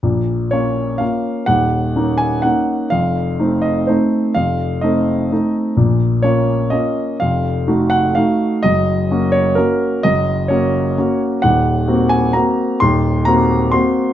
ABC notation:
X:1
M:3/4
L:1/8
Q:1/4=127
K:Bbm
V:1 name="Grand piano"
z2 d2 f2 | g3 a g2 | f3 e c2 | f2 e3 z |
z2 d2 e2 | f3 g f2 | e3 d B2 | e2 d3 z |
g3 a b2 | c'2 b2 c'2 |]
V:2 name="Grand piano"
[B,,,B,,]2 [B,DF]2 [B,DF]2 | [E,,,E,,]2 [B,DE]2 [B,DE]2 | [F,,,F,,]2 [=A,CE]2 [A,CE]2 | [F,,,F,,]2 [=A,CE]2 [A,CE]2 |
[B,,,B,,]2 [B,DF]2 [B,DF]2 | [F,,,F,,]2 [=A,EG]2 [A,EG]2 | [G,,,G,,]2 [B,DG]2 [B,DG]2 | [G,,,G,,]2 [B,DG]2 [B,DG]2 |
[E,,,E,,]2 [B,CG]2 [B,CG]2 | [E,,,E,,]2 [B,CG]2 [B,CG]2 |]